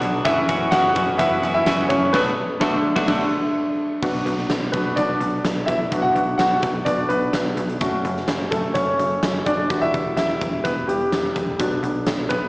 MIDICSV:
0, 0, Header, 1, 6, 480
1, 0, Start_track
1, 0, Key_signature, 2, "minor"
1, 0, Tempo, 472441
1, 258, Time_signature, 4, 2, 24, 8
1, 12684, End_track
2, 0, Start_track
2, 0, Title_t, "Grand piano"
2, 0, Program_c, 0, 0
2, 0, Control_c, 0, 64, 127
2, 0, Note_on_c, 0, 54, 48
2, 0, Note_on_c, 0, 59, 44
2, 0, Note_on_c, 0, 62, 52
2, 0, Note_on_c, 0, 64, 61
2, 0, Note_on_c, 0, 66, 67
2, 0, Note_on_c, 0, 74, 80
2, 0, Note_on_c, 0, 76, 78
2, 0, Note_on_c, 0, 78, 92
2, 252, Note_off_c, 0, 76, 0
2, 252, Note_on_c, 0, 76, 96
2, 254, Note_on_c, 0, 52, 55
2, 258, Note_off_c, 0, 59, 0
2, 258, Note_on_c, 0, 59, 51
2, 268, Note_on_c, 0, 61, 59
2, 271, Note_off_c, 0, 64, 0
2, 271, Note_on_c, 0, 64, 75
2, 272, Control_c, 0, 64, 0
2, 275, Note_off_c, 0, 54, 0
2, 276, Note_off_c, 0, 74, 0
2, 276, Note_off_c, 0, 78, 0
2, 277, Note_off_c, 0, 66, 0
2, 280, Note_off_c, 0, 62, 0
2, 445, Control_c, 0, 64, 127
2, 710, Note_off_c, 0, 64, 0
2, 722, Note_on_c, 0, 78, 101
2, 743, Note_on_c, 0, 66, 78
2, 748, Note_off_c, 0, 76, 0
2, 939, Note_off_c, 0, 52, 0
2, 941, Note_off_c, 0, 59, 0
2, 946, Note_off_c, 0, 61, 0
2, 969, Note_on_c, 0, 52, 49
2, 976, Note_on_c, 0, 59, 44
2, 979, Note_on_c, 0, 61, 54
2, 1186, Note_off_c, 0, 66, 0
2, 1188, Note_off_c, 0, 52, 0
2, 1192, Note_off_c, 0, 59, 0
2, 1194, Note_off_c, 0, 61, 0
2, 1201, Note_on_c, 0, 76, 95
2, 1223, Note_off_c, 0, 78, 0
2, 1225, Note_on_c, 0, 64, 75
2, 1550, Note_off_c, 0, 76, 0
2, 1555, Note_off_c, 0, 64, 0
2, 1566, Note_on_c, 0, 76, 94
2, 1585, Note_on_c, 0, 64, 76
2, 1915, Note_off_c, 0, 64, 0
2, 1919, Note_on_c, 0, 73, 81
2, 1941, Note_off_c, 0, 76, 0
2, 1943, Note_on_c, 0, 61, 62
2, 2162, Note_off_c, 0, 61, 0
2, 2162, Note_on_c, 0, 71, 98
2, 2174, Note_off_c, 0, 73, 0
2, 2184, Note_on_c, 0, 59, 96
2, 2185, Control_c, 0, 64, 0
2, 2331, Note_off_c, 0, 71, 0
2, 2343, Note_off_c, 0, 59, 0
2, 2378, Control_c, 0, 64, 127
2, 2641, Note_on_c, 0, 50, 94
2, 2647, Note_on_c, 0, 57, 93
2, 2810, Note_off_c, 0, 50, 0
2, 2813, Note_off_c, 0, 57, 0
2, 3001, Note_on_c, 0, 50, 89
2, 3006, Note_on_c, 0, 57, 94
2, 3104, Note_off_c, 0, 50, 0
2, 3111, Note_off_c, 0, 57, 0
2, 3120, Note_on_c, 0, 50, 91
2, 3127, Note_on_c, 0, 57, 88
2, 3289, Note_off_c, 0, 50, 0
2, 3293, Note_off_c, 0, 57, 0
2, 4084, Note_on_c, 0, 59, 46
2, 4090, Note_on_c, 0, 62, 44
2, 4095, Note_on_c, 0, 66, 52
2, 4106, Control_c, 0, 64, 0
2, 4286, Control_c, 0, 64, 127
2, 4772, Note_off_c, 0, 59, 0
2, 4776, Note_off_c, 0, 62, 0
2, 4778, Note_off_c, 0, 66, 0
2, 4796, Note_on_c, 0, 71, 73
2, 4808, Note_on_c, 0, 59, 57
2, 4813, Note_on_c, 0, 62, 38
2, 4816, Note_on_c, 0, 66, 47
2, 5029, Note_off_c, 0, 62, 0
2, 5031, Note_off_c, 0, 66, 0
2, 5039, Note_on_c, 0, 74, 83
2, 5041, Note_off_c, 0, 59, 0
2, 5052, Note_off_c, 0, 71, 0
2, 5067, Note_on_c, 0, 62, 67
2, 5492, Note_off_c, 0, 74, 0
2, 5507, Note_off_c, 0, 62, 0
2, 5752, Note_on_c, 0, 76, 80
2, 5780, Note_on_c, 0, 64, 58
2, 6005, Note_on_c, 0, 59, 48
2, 6011, Note_on_c, 0, 62, 45
2, 6017, Note_on_c, 0, 66, 54
2, 6112, Note_off_c, 0, 64, 0
2, 6116, Note_on_c, 0, 78, 87
2, 6122, Note_off_c, 0, 66, 0
2, 6134, Note_off_c, 0, 76, 0
2, 6138, Note_on_c, 0, 66, 67
2, 6464, Note_off_c, 0, 78, 0
2, 6471, Note_off_c, 0, 66, 0
2, 6479, Note_on_c, 0, 78, 86
2, 6501, Note_on_c, 0, 66, 65
2, 6694, Note_off_c, 0, 59, 0
2, 6697, Note_off_c, 0, 62, 0
2, 6944, Note_off_c, 0, 66, 0
2, 6958, Note_on_c, 0, 74, 77
2, 6966, Note_on_c, 0, 59, 42
2, 6971, Note_on_c, 0, 62, 55
2, 6972, Note_on_c, 0, 66, 47
2, 6982, Note_off_c, 0, 78, 0
2, 7186, Note_off_c, 0, 59, 0
2, 7189, Note_off_c, 0, 66, 0
2, 7199, Note_off_c, 0, 62, 0
2, 7200, Note_on_c, 0, 71, 80
2, 7214, Note_off_c, 0, 74, 0
2, 7217, Note_on_c, 0, 59, 57
2, 7654, Note_off_c, 0, 71, 0
2, 7663, Note_off_c, 0, 59, 0
2, 7931, Note_on_c, 0, 57, 52
2, 7936, Note_on_c, 0, 61, 49
2, 7943, Note_on_c, 0, 66, 56
2, 7948, Control_c, 0, 64, 0
2, 8101, Control_c, 0, 64, 127
2, 8253, Note_off_c, 0, 57, 0
2, 8255, Note_off_c, 0, 61, 0
2, 8259, Note_off_c, 0, 66, 0
2, 8644, Note_on_c, 0, 69, 77
2, 8668, Note_on_c, 0, 57, 55
2, 8700, Note_off_c, 0, 69, 0
2, 8720, Note_off_c, 0, 57, 0
2, 8881, Note_on_c, 0, 73, 85
2, 8901, Note_on_c, 0, 61, 67
2, 9335, Note_off_c, 0, 73, 0
2, 9346, Note_off_c, 0, 61, 0
2, 9612, Note_on_c, 0, 74, 78
2, 9628, Note_on_c, 0, 62, 66
2, 9851, Note_on_c, 0, 55, 47
2, 9858, Note_on_c, 0, 64, 46
2, 9863, Note_on_c, 0, 66, 58
2, 9872, Control_c, 0, 64, 0
2, 9950, Note_off_c, 0, 74, 0
2, 9958, Note_off_c, 0, 62, 0
2, 9973, Note_on_c, 0, 76, 102
2, 9974, Note_off_c, 0, 64, 0
2, 9989, Note_on_c, 0, 64, 67
2, 10064, Control_c, 0, 64, 127
2, 10314, Note_off_c, 0, 76, 0
2, 10319, Note_off_c, 0, 64, 0
2, 10329, Note_on_c, 0, 76, 83
2, 10351, Note_on_c, 0, 64, 69
2, 10792, Note_off_c, 0, 64, 0
2, 10808, Note_on_c, 0, 71, 76
2, 10829, Note_off_c, 0, 76, 0
2, 10830, Note_on_c, 0, 59, 57
2, 11048, Note_off_c, 0, 59, 0
2, 11048, Note_on_c, 0, 67, 67
2, 11056, Note_off_c, 0, 55, 0
2, 11061, Note_off_c, 0, 71, 0
2, 11071, Note_on_c, 0, 55, 51
2, 11500, Note_off_c, 0, 67, 0
2, 11513, Note_off_c, 0, 55, 0
2, 11742, Note_off_c, 0, 66, 0
2, 11775, Note_on_c, 0, 54, 48
2, 11781, Note_on_c, 0, 59, 42
2, 11786, Note_on_c, 0, 62, 53
2, 11796, Control_c, 0, 64, 0
2, 11961, Control_c, 0, 64, 127
2, 12462, Note_off_c, 0, 54, 0
2, 12466, Note_off_c, 0, 59, 0
2, 12468, Note_off_c, 0, 62, 0
2, 12487, Note_on_c, 0, 71, 73
2, 12509, Note_on_c, 0, 59, 59
2, 12684, Note_off_c, 0, 59, 0
2, 12684, Note_off_c, 0, 71, 0
2, 12684, End_track
3, 0, Start_track
3, 0, Title_t, "Clean electric guitar"
3, 0, Program_c, 1, 27
3, 0, Note_on_c, 1, 47, 80
3, 0, Note_on_c, 1, 54, 81
3, 0, Note_on_c, 1, 59, 86
3, 0, Note_on_c, 1, 62, 76
3, 0, Note_on_c, 1, 66, 87
3, 248, Note_on_c, 1, 42, 82
3, 250, Note_off_c, 1, 47, 0
3, 253, Note_off_c, 1, 54, 0
3, 254, Note_on_c, 1, 49, 76
3, 255, Note_off_c, 1, 59, 0
3, 257, Note_off_c, 1, 62, 0
3, 257, Note_on_c, 1, 52, 87
3, 259, Note_on_c, 1, 59, 86
3, 261, Note_off_c, 1, 66, 0
3, 261, Note_on_c, 1, 61, 82
3, 265, Note_on_c, 1, 66, 84
3, 480, Note_off_c, 1, 66, 0
3, 488, Note_off_c, 1, 61, 0
3, 493, Note_off_c, 1, 42, 0
3, 493, Note_on_c, 1, 66, 64
3, 495, Note_off_c, 1, 49, 0
3, 497, Note_off_c, 1, 52, 0
3, 498, Note_off_c, 1, 59, 0
3, 501, Note_on_c, 1, 61, 55
3, 509, Note_on_c, 1, 59, 55
3, 513, Note_on_c, 1, 52, 47
3, 724, Note_off_c, 1, 52, 0
3, 729, Note_off_c, 1, 59, 0
3, 730, Note_on_c, 1, 42, 86
3, 732, Note_off_c, 1, 61, 0
3, 734, Note_on_c, 1, 49, 90
3, 735, Note_off_c, 1, 66, 0
3, 736, Note_on_c, 1, 52, 91
3, 741, Note_on_c, 1, 59, 95
3, 744, Note_on_c, 1, 61, 83
3, 746, Note_on_c, 1, 66, 89
3, 959, Note_off_c, 1, 66, 0
3, 969, Note_off_c, 1, 61, 0
3, 972, Note_on_c, 1, 66, 55
3, 973, Note_off_c, 1, 42, 0
3, 975, Note_off_c, 1, 49, 0
3, 975, Note_off_c, 1, 59, 0
3, 976, Note_off_c, 1, 52, 0
3, 981, Note_on_c, 1, 61, 51
3, 987, Note_on_c, 1, 59, 50
3, 995, Note_on_c, 1, 52, 45
3, 1197, Note_off_c, 1, 52, 0
3, 1205, Note_off_c, 1, 59, 0
3, 1209, Note_on_c, 1, 52, 61
3, 1213, Note_off_c, 1, 61, 0
3, 1214, Note_off_c, 1, 66, 0
3, 1217, Note_on_c, 1, 59, 69
3, 1226, Note_on_c, 1, 61, 70
3, 1229, Note_on_c, 1, 66, 69
3, 1435, Note_off_c, 1, 66, 0
3, 1446, Note_off_c, 1, 61, 0
3, 1447, Note_on_c, 1, 66, 54
3, 1452, Note_off_c, 1, 52, 0
3, 1453, Note_off_c, 1, 59, 0
3, 1458, Note_on_c, 1, 61, 57
3, 1465, Note_on_c, 1, 59, 49
3, 1471, Note_on_c, 1, 52, 45
3, 1687, Note_off_c, 1, 52, 0
3, 1689, Note_off_c, 1, 59, 0
3, 1689, Note_on_c, 1, 42, 86
3, 1690, Note_off_c, 1, 61, 0
3, 1691, Note_off_c, 1, 66, 0
3, 1692, Note_on_c, 1, 49, 90
3, 1699, Note_on_c, 1, 52, 86
3, 1701, Note_on_c, 1, 59, 86
3, 1702, Note_on_c, 1, 61, 91
3, 1704, Note_on_c, 1, 66, 88
3, 2163, Note_off_c, 1, 49, 0
3, 2167, Note_on_c, 1, 47, 95
3, 2170, Note_off_c, 1, 52, 0
3, 2171, Note_off_c, 1, 42, 0
3, 2174, Note_off_c, 1, 59, 0
3, 2174, Note_on_c, 1, 54, 89
3, 2177, Note_off_c, 1, 61, 0
3, 2178, Note_on_c, 1, 57, 94
3, 2181, Note_off_c, 1, 66, 0
3, 2181, Note_on_c, 1, 62, 95
3, 2185, Note_on_c, 1, 66, 89
3, 2333, Note_off_c, 1, 47, 0
3, 2337, Note_off_c, 1, 54, 0
3, 2339, Note_off_c, 1, 57, 0
3, 2341, Note_off_c, 1, 62, 0
3, 2344, Note_off_c, 1, 66, 0
3, 2653, Note_on_c, 1, 47, 94
3, 2655, Note_on_c, 1, 54, 94
3, 2661, Note_on_c, 1, 57, 99
3, 2664, Note_on_c, 1, 62, 100
3, 2669, Note_on_c, 1, 66, 97
3, 2816, Note_off_c, 1, 47, 0
3, 2818, Note_off_c, 1, 54, 0
3, 2821, Note_off_c, 1, 57, 0
3, 2823, Note_off_c, 1, 62, 0
3, 2825, Note_off_c, 1, 66, 0
3, 3006, Note_on_c, 1, 66, 95
3, 3020, Note_on_c, 1, 62, 91
3, 3028, Note_on_c, 1, 57, 89
3, 3111, Note_off_c, 1, 66, 0
3, 3119, Note_off_c, 1, 62, 0
3, 3124, Note_off_c, 1, 57, 0
3, 3131, Note_on_c, 1, 54, 97
3, 3139, Note_on_c, 1, 57, 90
3, 3146, Note_on_c, 1, 62, 95
3, 3153, Note_on_c, 1, 66, 90
3, 3295, Note_off_c, 1, 54, 0
3, 3300, Note_off_c, 1, 57, 0
3, 3304, Note_off_c, 1, 62, 0
3, 3308, Note_off_c, 1, 66, 0
3, 12684, End_track
4, 0, Start_track
4, 0, Title_t, "Analog synth bass"
4, 0, Program_c, 2, 38
4, 19, Note_on_c, 2, 35, 103
4, 215, Note_off_c, 2, 35, 0
4, 255, Note_on_c, 2, 30, 112
4, 452, Note_off_c, 2, 30, 0
4, 497, Note_on_c, 2, 30, 102
4, 694, Note_off_c, 2, 30, 0
4, 742, Note_on_c, 2, 30, 100
4, 937, Note_off_c, 2, 30, 0
4, 974, Note_on_c, 2, 30, 95
4, 1171, Note_off_c, 2, 30, 0
4, 1211, Note_on_c, 2, 30, 98
4, 1410, Note_off_c, 2, 30, 0
4, 1459, Note_on_c, 2, 30, 93
4, 1654, Note_off_c, 2, 30, 0
4, 1693, Note_on_c, 2, 30, 105
4, 1890, Note_off_c, 2, 30, 0
4, 1932, Note_on_c, 2, 30, 102
4, 2130, Note_off_c, 2, 30, 0
4, 2172, Note_on_c, 2, 35, 111
4, 2336, Note_off_c, 2, 35, 0
4, 2651, Note_on_c, 2, 35, 100
4, 2815, Note_off_c, 2, 35, 0
4, 3009, Note_on_c, 2, 35, 96
4, 3113, Note_off_c, 2, 35, 0
4, 3129, Note_on_c, 2, 35, 99
4, 3294, Note_off_c, 2, 35, 0
4, 4089, Note_on_c, 2, 35, 96
4, 4287, Note_off_c, 2, 35, 0
4, 4327, Note_on_c, 2, 35, 98
4, 4526, Note_off_c, 2, 35, 0
4, 4572, Note_on_c, 2, 35, 87
4, 4769, Note_off_c, 2, 35, 0
4, 4810, Note_on_c, 2, 35, 82
4, 5008, Note_off_c, 2, 35, 0
4, 5048, Note_on_c, 2, 35, 98
4, 5247, Note_off_c, 2, 35, 0
4, 5288, Note_on_c, 2, 35, 83
4, 5487, Note_off_c, 2, 35, 0
4, 5532, Note_on_c, 2, 35, 88
4, 5729, Note_off_c, 2, 35, 0
4, 5771, Note_on_c, 2, 35, 88
4, 5969, Note_off_c, 2, 35, 0
4, 6013, Note_on_c, 2, 35, 90
4, 6210, Note_off_c, 2, 35, 0
4, 6252, Note_on_c, 2, 35, 96
4, 6449, Note_off_c, 2, 35, 0
4, 6494, Note_on_c, 2, 35, 99
4, 6691, Note_off_c, 2, 35, 0
4, 6734, Note_on_c, 2, 35, 91
4, 6931, Note_off_c, 2, 35, 0
4, 6973, Note_on_c, 2, 35, 95
4, 7171, Note_off_c, 2, 35, 0
4, 7210, Note_on_c, 2, 35, 87
4, 7409, Note_off_c, 2, 35, 0
4, 7448, Note_on_c, 2, 35, 100
4, 7648, Note_off_c, 2, 35, 0
4, 7691, Note_on_c, 2, 35, 86
4, 7934, Note_on_c, 2, 30, 94
4, 7949, Note_off_c, 2, 35, 0
4, 8131, Note_off_c, 2, 30, 0
4, 8174, Note_on_c, 2, 30, 104
4, 8372, Note_off_c, 2, 30, 0
4, 8414, Note_on_c, 2, 30, 95
4, 8612, Note_off_c, 2, 30, 0
4, 8656, Note_on_c, 2, 30, 99
4, 8853, Note_off_c, 2, 30, 0
4, 8892, Note_on_c, 2, 30, 97
4, 9091, Note_off_c, 2, 30, 0
4, 9131, Note_on_c, 2, 30, 86
4, 9331, Note_off_c, 2, 30, 0
4, 9375, Note_on_c, 2, 30, 104
4, 9573, Note_off_c, 2, 30, 0
4, 9614, Note_on_c, 2, 30, 91
4, 9812, Note_off_c, 2, 30, 0
4, 9855, Note_on_c, 2, 28, 105
4, 10053, Note_off_c, 2, 28, 0
4, 10100, Note_on_c, 2, 28, 98
4, 10296, Note_off_c, 2, 28, 0
4, 10331, Note_on_c, 2, 28, 93
4, 10531, Note_off_c, 2, 28, 0
4, 10581, Note_on_c, 2, 28, 88
4, 10777, Note_off_c, 2, 28, 0
4, 10819, Note_on_c, 2, 28, 92
4, 11016, Note_off_c, 2, 28, 0
4, 11056, Note_on_c, 2, 28, 77
4, 11254, Note_off_c, 2, 28, 0
4, 11296, Note_on_c, 2, 28, 98
4, 11494, Note_off_c, 2, 28, 0
4, 11541, Note_on_c, 2, 28, 81
4, 11738, Note_off_c, 2, 28, 0
4, 11780, Note_on_c, 2, 35, 105
4, 11977, Note_off_c, 2, 35, 0
4, 12017, Note_on_c, 2, 35, 92
4, 12216, Note_off_c, 2, 35, 0
4, 12262, Note_on_c, 2, 35, 94
4, 12458, Note_off_c, 2, 35, 0
4, 12502, Note_on_c, 2, 35, 90
4, 12684, Note_off_c, 2, 35, 0
4, 12684, End_track
5, 0, Start_track
5, 0, Title_t, "Downlifter"
5, 0, Program_c, 3, 103
5, 4092, Note_on_c, 3, 60, 65
5, 7935, Note_off_c, 3, 60, 0
5, 12684, End_track
6, 0, Start_track
6, 0, Title_t, "Drums"
6, 16, Note_on_c, 9, 42, 70
6, 118, Note_off_c, 9, 42, 0
6, 256, Note_on_c, 9, 42, 91
6, 257, Note_on_c, 9, 36, 109
6, 357, Note_off_c, 9, 42, 0
6, 359, Note_off_c, 9, 36, 0
6, 493, Note_on_c, 9, 42, 69
6, 497, Note_on_c, 9, 36, 91
6, 595, Note_off_c, 9, 42, 0
6, 599, Note_off_c, 9, 36, 0
6, 730, Note_on_c, 9, 42, 98
6, 731, Note_on_c, 9, 38, 114
6, 832, Note_off_c, 9, 42, 0
6, 833, Note_off_c, 9, 38, 0
6, 967, Note_on_c, 9, 42, 69
6, 976, Note_on_c, 9, 36, 88
6, 1069, Note_off_c, 9, 42, 0
6, 1077, Note_off_c, 9, 36, 0
6, 1212, Note_on_c, 9, 36, 88
6, 1212, Note_on_c, 9, 42, 94
6, 1314, Note_off_c, 9, 36, 0
6, 1314, Note_off_c, 9, 42, 0
6, 1456, Note_on_c, 9, 42, 73
6, 1558, Note_off_c, 9, 42, 0
6, 1691, Note_on_c, 9, 38, 115
6, 1694, Note_on_c, 9, 42, 103
6, 1792, Note_off_c, 9, 38, 0
6, 1795, Note_off_c, 9, 42, 0
6, 1931, Note_on_c, 9, 42, 71
6, 1933, Note_on_c, 9, 36, 86
6, 2032, Note_off_c, 9, 42, 0
6, 2034, Note_off_c, 9, 36, 0
6, 2172, Note_on_c, 9, 38, 104
6, 2172, Note_on_c, 9, 49, 79
6, 2173, Note_on_c, 9, 36, 105
6, 2274, Note_off_c, 9, 36, 0
6, 2274, Note_off_c, 9, 38, 0
6, 2274, Note_off_c, 9, 49, 0
6, 2651, Note_on_c, 9, 38, 102
6, 2652, Note_on_c, 9, 36, 110
6, 2753, Note_off_c, 9, 38, 0
6, 2754, Note_off_c, 9, 36, 0
6, 3010, Note_on_c, 9, 38, 100
6, 3011, Note_on_c, 9, 36, 102
6, 3111, Note_off_c, 9, 38, 0
6, 3113, Note_off_c, 9, 36, 0
6, 3130, Note_on_c, 9, 38, 98
6, 3130, Note_on_c, 9, 49, 77
6, 3131, Note_on_c, 9, 36, 98
6, 3232, Note_off_c, 9, 36, 0
6, 3232, Note_off_c, 9, 38, 0
6, 3232, Note_off_c, 9, 49, 0
6, 4089, Note_on_c, 9, 49, 74
6, 4090, Note_on_c, 9, 36, 93
6, 4190, Note_off_c, 9, 49, 0
6, 4192, Note_off_c, 9, 36, 0
6, 4333, Note_on_c, 9, 42, 58
6, 4434, Note_off_c, 9, 42, 0
6, 4453, Note_on_c, 9, 38, 29
6, 4555, Note_off_c, 9, 38, 0
6, 4568, Note_on_c, 9, 42, 81
6, 4569, Note_on_c, 9, 38, 94
6, 4670, Note_off_c, 9, 42, 0
6, 4671, Note_off_c, 9, 38, 0
6, 4807, Note_on_c, 9, 42, 60
6, 4812, Note_on_c, 9, 36, 77
6, 4909, Note_off_c, 9, 42, 0
6, 4914, Note_off_c, 9, 36, 0
6, 5050, Note_on_c, 9, 36, 71
6, 5055, Note_on_c, 9, 42, 84
6, 5152, Note_off_c, 9, 36, 0
6, 5156, Note_off_c, 9, 42, 0
6, 5293, Note_on_c, 9, 42, 63
6, 5394, Note_off_c, 9, 42, 0
6, 5533, Note_on_c, 9, 38, 97
6, 5536, Note_on_c, 9, 42, 89
6, 5634, Note_off_c, 9, 38, 0
6, 5638, Note_off_c, 9, 42, 0
6, 5772, Note_on_c, 9, 36, 76
6, 5772, Note_on_c, 9, 42, 60
6, 5873, Note_off_c, 9, 36, 0
6, 5873, Note_off_c, 9, 42, 0
6, 6014, Note_on_c, 9, 36, 96
6, 6015, Note_on_c, 9, 42, 84
6, 6116, Note_off_c, 9, 36, 0
6, 6116, Note_off_c, 9, 42, 0
6, 6258, Note_on_c, 9, 42, 55
6, 6360, Note_off_c, 9, 42, 0
6, 6492, Note_on_c, 9, 42, 81
6, 6493, Note_on_c, 9, 38, 91
6, 6594, Note_off_c, 9, 42, 0
6, 6595, Note_off_c, 9, 38, 0
6, 6731, Note_on_c, 9, 42, 64
6, 6735, Note_on_c, 9, 36, 78
6, 6832, Note_off_c, 9, 42, 0
6, 6837, Note_off_c, 9, 36, 0
6, 6972, Note_on_c, 9, 36, 74
6, 6975, Note_on_c, 9, 42, 83
6, 7074, Note_off_c, 9, 36, 0
6, 7077, Note_off_c, 9, 42, 0
6, 7213, Note_on_c, 9, 42, 61
6, 7314, Note_off_c, 9, 42, 0
6, 7451, Note_on_c, 9, 38, 94
6, 7454, Note_on_c, 9, 42, 92
6, 7552, Note_off_c, 9, 38, 0
6, 7556, Note_off_c, 9, 42, 0
6, 7693, Note_on_c, 9, 42, 62
6, 7794, Note_off_c, 9, 42, 0
6, 7819, Note_on_c, 9, 42, 46
6, 7921, Note_off_c, 9, 42, 0
6, 7933, Note_on_c, 9, 42, 83
6, 7936, Note_on_c, 9, 36, 93
6, 8034, Note_off_c, 9, 42, 0
6, 8037, Note_off_c, 9, 36, 0
6, 8177, Note_on_c, 9, 42, 60
6, 8279, Note_off_c, 9, 42, 0
6, 8301, Note_on_c, 9, 38, 30
6, 8402, Note_off_c, 9, 38, 0
6, 8409, Note_on_c, 9, 42, 82
6, 8410, Note_on_c, 9, 38, 99
6, 8511, Note_off_c, 9, 42, 0
6, 8512, Note_off_c, 9, 38, 0
6, 8652, Note_on_c, 9, 42, 64
6, 8657, Note_on_c, 9, 36, 79
6, 8754, Note_off_c, 9, 42, 0
6, 8759, Note_off_c, 9, 36, 0
6, 8891, Note_on_c, 9, 42, 84
6, 8894, Note_on_c, 9, 36, 73
6, 8993, Note_off_c, 9, 42, 0
6, 8996, Note_off_c, 9, 36, 0
6, 9138, Note_on_c, 9, 42, 62
6, 9240, Note_off_c, 9, 42, 0
6, 9375, Note_on_c, 9, 38, 100
6, 9378, Note_on_c, 9, 42, 92
6, 9477, Note_off_c, 9, 38, 0
6, 9480, Note_off_c, 9, 42, 0
6, 9613, Note_on_c, 9, 42, 64
6, 9616, Note_on_c, 9, 36, 78
6, 9715, Note_off_c, 9, 42, 0
6, 9718, Note_off_c, 9, 36, 0
6, 9856, Note_on_c, 9, 42, 82
6, 9858, Note_on_c, 9, 36, 100
6, 9958, Note_off_c, 9, 42, 0
6, 9959, Note_off_c, 9, 36, 0
6, 10099, Note_on_c, 9, 42, 62
6, 10101, Note_on_c, 9, 36, 82
6, 10201, Note_off_c, 9, 42, 0
6, 10202, Note_off_c, 9, 36, 0
6, 10336, Note_on_c, 9, 42, 83
6, 10337, Note_on_c, 9, 38, 94
6, 10438, Note_off_c, 9, 38, 0
6, 10438, Note_off_c, 9, 42, 0
6, 10577, Note_on_c, 9, 42, 59
6, 10581, Note_on_c, 9, 36, 81
6, 10679, Note_off_c, 9, 42, 0
6, 10683, Note_off_c, 9, 36, 0
6, 10819, Note_on_c, 9, 36, 69
6, 10823, Note_on_c, 9, 42, 80
6, 10921, Note_off_c, 9, 36, 0
6, 10924, Note_off_c, 9, 42, 0
6, 11066, Note_on_c, 9, 42, 66
6, 11168, Note_off_c, 9, 42, 0
6, 11303, Note_on_c, 9, 38, 98
6, 11306, Note_on_c, 9, 42, 83
6, 11404, Note_off_c, 9, 38, 0
6, 11408, Note_off_c, 9, 42, 0
6, 11540, Note_on_c, 9, 36, 77
6, 11542, Note_on_c, 9, 42, 58
6, 11642, Note_off_c, 9, 36, 0
6, 11644, Note_off_c, 9, 42, 0
6, 11782, Note_on_c, 9, 36, 97
6, 11784, Note_on_c, 9, 42, 84
6, 11883, Note_off_c, 9, 36, 0
6, 11885, Note_off_c, 9, 42, 0
6, 12024, Note_on_c, 9, 42, 60
6, 12126, Note_off_c, 9, 42, 0
6, 12258, Note_on_c, 9, 42, 83
6, 12259, Note_on_c, 9, 38, 95
6, 12360, Note_off_c, 9, 42, 0
6, 12361, Note_off_c, 9, 38, 0
6, 12495, Note_on_c, 9, 42, 64
6, 12502, Note_on_c, 9, 36, 80
6, 12597, Note_off_c, 9, 42, 0
6, 12604, Note_off_c, 9, 36, 0
6, 12684, End_track
0, 0, End_of_file